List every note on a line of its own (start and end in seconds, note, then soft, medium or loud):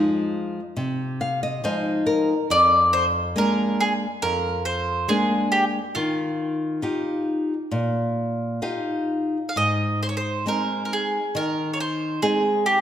0.00 0.59 F3 soft
0.00 0.59 G#3 soft
0.00 0.60 D#4 soft
0.00 2.03 F4 medium
0.77 1.61 C3 medium
1.21 1.41 F5 medium
1.43 1.62 D#5 medium
1.64 2.32 F3 soft
1.64 2.32 G#3 soft
1.64 2.33 D#4 medium
1.64 2.04 C5 medium
2.06 2.46 A#4 medium
2.50 3.34 F2 medium
2.50 2.93 D5 loud
2.93 3.05 C5 medium
3.36 4.05 G#3 soft
3.36 4.05 A#3 soft
3.36 4.05 D4 medium
3.36 3.82 A#4 medium
3.81 3.92 G#4 medium
4.22 5.06 F2 medium
4.22 4.65 A#4 medium
4.65 5.10 C5 medium
5.08 5.78 G#3 soft
5.08 5.79 A#3 soft
5.08 5.79 D4 soft
5.08 5.51 G#4 medium
5.52 5.64 G4 medium
5.95 6.80 D#3 medium
5.95 9.04 F4 medium
6.82 7.53 D#4 soft
6.82 7.53 F4 soft
6.82 7.53 G4 soft
7.71 8.59 A#2 medium
8.62 9.37 D#4 soft
8.62 9.37 F4 soft
8.62 9.37 G4 soft
8.62 9.51 F5 medium
9.49 9.56 F5 medium
9.56 10.44 G#2 medium
9.56 10.02 D#5 medium
10.03 10.08 C5 medium
10.09 10.16 C#5 medium
10.17 10.45 C5 medium
10.46 11.17 G#3 soft
10.46 11.18 C4 soft
10.46 11.18 D#4 soft
10.46 10.84 A#4 medium
10.85 10.92 A#4 medium
10.93 11.38 G#4 medium
11.35 12.20 D#3 medium
11.35 11.73 A#4 medium
11.74 11.80 C#5 medium
11.80 12.20 C5 medium
12.22 12.81 G#3 soft
12.22 12.81 C4 soft
12.22 12.81 D#4 soft
12.22 12.66 G#4 medium
12.66 12.78 G4 medium